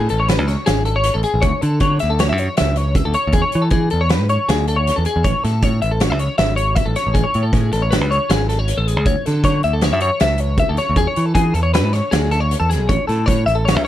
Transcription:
0.09 picked electric bass A1, clean electric guitar A4, closed hi-hat
0.20 clean electric guitar C#5
0.28 clean electric guitar B4, snare, closed hi-hat
0.39 picked electric bass C#2
0.48 clean electric guitar C#5, snare, closed hi-hat
0.66 picked electric bass G#1, clean electric guitar G#4, snare, closed hi-hat
0.85 clean electric guitar A4, closed hi-hat
0.96 clean electric guitar C#5
1.04 closed hi-hat
1.14 picked electric bass A1, clean electric guitar A4
1.23 clean electric guitar G#4, closed hi-hat
1.34 picked electric bass A1
1.42 picked electric bass D2, clean electric guitar C#5, kick, closed hi-hat
1.61 picked electric bass D3, clean electric guitar A4, closed hi-hat
1.80 picked electric bass D3, clean electric guitar C#5, kick, closed hi-hat
1.99 picked electric bass D2, clean electric guitar E5, snare, closed hi-hat
2.10 clean electric guitar A4
2.19 clean electric guitar C#5, snare, closed hi-hat
2.29 picked electric bass F#2, clean electric guitar E5
2.38 clean electric guitar C#5, closed hi-hat
2.57 picked electric bass C#2, clean electric guitar E5, snare, closed hi-hat
2.76 clean electric guitar C#5, closed hi-hat
2.95 clean electric guitar E5, kick, closed hi-hat
3.05 picked electric bass D2, clean electric guitar A4
3.14 clean electric guitar C#5, closed hi-hat
3.27 picked electric bass D2
3.32 picked electric bass E2, clean electric guitar G#4, kick, closed hi-hat
3.42 clean electric guitar C#5
3.52 picked electric bass E3, closed hi-hat
3.62 clean electric guitar A4
3.70 picked electric bass E3, clean electric guitar G#4, kick, closed hi-hat
3.90 picked electric bass E2, clean electric guitar A4, closed hi-hat
4.01 clean electric guitar C#5
4.09 clean electric guitar B4, snare, closed hi-hat
4.21 picked electric bass G#2
4.29 clean electric guitar C#5, closed hi-hat
4.49 picked electric bass D2, clean electric guitar G#4, snare, closed hi-hat
4.68 clean electric guitar A4, closed hi-hat
4.76 clean electric guitar C#5
4.87 snare, closed hi-hat
4.96 picked electric bass E2, clean electric guitar A4
5.05 clean electric guitar G#4, closed hi-hat
5.16 picked electric bass E2
5.24 picked electric bass A1, clean electric guitar C#5, kick, closed hi-hat
5.44 picked electric bass A2, clean electric guitar A4, snare, closed hi-hat
5.62 picked electric bass A2, clean electric guitar C#5, kick, closed hi-hat
5.82 picked electric bass A1, clean electric guitar E5, closed hi-hat
5.91 clean electric guitar A4
6.00 clean electric guitar C#5, snare, closed hi-hat
6.10 picked electric bass C#2, clean electric guitar E5
6.19 clean electric guitar C#5, closed hi-hat
6.38 picked electric bass G#1, clean electric guitar E5, snare, closed hi-hat
6.56 clean electric guitar C#5, closed hi-hat
6.75 clean electric guitar E5, kick, closed hi-hat
6.86 picked electric bass A1, clean electric guitar A4
6.96 clean electric guitar C#5, snare, closed hi-hat
7.07 picked electric bass A1
7.14 picked electric bass A1, clean electric guitar G#4, kick, closed hi-hat
7.24 clean electric guitar C#5
7.34 picked electric bass A2, closed hi-hat
7.43 clean electric guitar A4
7.53 picked electric bass A2, clean electric guitar G#4, kick, snare, closed hi-hat
7.72 picked electric bass A1, clean electric guitar A4, snare, closed hi-hat
7.82 clean electric guitar C#5
7.91 clean electric guitar B4, snare, closed hi-hat
8.01 picked electric bass C#2
8.11 clean electric guitar C#5, closed hi-hat
8.29 picked electric bass G#1, clean electric guitar G#4, snare, closed hi-hat
8.49 clean electric guitar A4, snare, closed hi-hat
8.59 clean electric guitar C#5
8.68 closed hi-hat
8.77 picked electric bass A1, clean electric guitar A4
8.87 clean electric guitar G#4, closed hi-hat
8.97 picked electric bass C#2
9.06 picked electric bass D2, clean electric guitar C#5, kick, closed hi-hat
9.26 picked electric bass D3, clean electric guitar A4, snare, closed hi-hat
9.44 picked electric bass D3, clean electric guitar C#5, kick, snare, closed hi-hat
9.63 picked electric bass D2, clean electric guitar E5, closed hi-hat
9.73 clean electric guitar A4
9.81 clean electric guitar C#5, snare, closed hi-hat
9.93 picked electric bass F#2, clean electric guitar E5
10.00 clean electric guitar C#5, closed hi-hat
10.20 picked electric bass C#2, clean electric guitar E5, snare, closed hi-hat
10.38 clean electric guitar C#5, closed hi-hat
10.57 clean electric guitar E5, kick, closed hi-hat
10.69 picked electric bass D2, clean electric guitar A4
10.77 clean electric guitar C#5, snare, closed hi-hat
10.89 picked electric bass D2
10.96 picked electric bass E2, clean electric guitar G#4, kick, closed hi-hat
11.07 clean electric guitar C#5
11.16 picked electric bass E3, closed hi-hat
11.26 clean electric guitar A4
11.35 picked electric bass E3, clean electric guitar G#4, kick, closed hi-hat
11.54 picked electric bass E2, clean electric guitar A4, closed hi-hat
11.63 clean electric guitar C#5
11.74 clean electric guitar B4, snare, closed hi-hat
11.84 picked electric bass G#2
11.93 clean electric guitar C#5, snare, closed hi-hat
12.11 picked electric bass D2, clean electric guitar G#4, snare, closed hi-hat
12.31 clean electric guitar A4, snare, closed hi-hat
12.40 clean electric guitar C#5
12.51 closed hi-hat
12.60 picked electric bass E2, clean electric guitar A4
12.70 clean electric guitar G#4, snare, closed hi-hat
12.80 picked electric bass B1
12.89 picked electric bass A1, clean electric guitar C#5, kick, closed hi-hat
13.07 picked electric bass A2, clean electric guitar A4, snare, closed hi-hat
13.26 picked electric bass A2, clean electric guitar C#5, kick, snare, closed hi-hat
13.46 picked electric bass A1, clean electric guitar E5, closed hi-hat
13.55 clean electric guitar A4
13.65 clean electric guitar C#5, snare, closed hi-hat
13.75 picked electric bass C#2, clean electric guitar E5

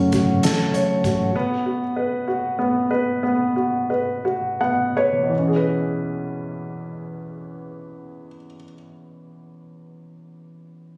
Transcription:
Already playing: fingered electric bass F#1, tonewheel organ C#3 F#3 A3 F#4, grand piano F#3 C#4 F#4 A4 C#5
0.12 grand piano F#4, kick, closed hi-hat
0.43 fingered electric bass A1, grand piano A4, snare, closed hi-hat
0.74 grand piano C#5, closed hi-hat
1.04 fingered electric bass A1, grand piano F#4, kick, closed hi-hat
1.36 grand piano B3
1.66 grand piano F#4
1.96 grand piano B4
2.28 grand piano F#4
2.59 grand piano B3
2.91 grand piano B4
3.23 grand piano B3
3.56 grand piano F#4
3.90 grand piano B4
4.25 grand piano F#4
4.61 grand piano B3 F#5
4.97 grand piano B4 C#5
5.12 grand piano E2
5.21 grand piano B2
5.30 grand piano E3
5.38 grand piano C#4
5.47 grand piano G#4
5.56 grand piano B4

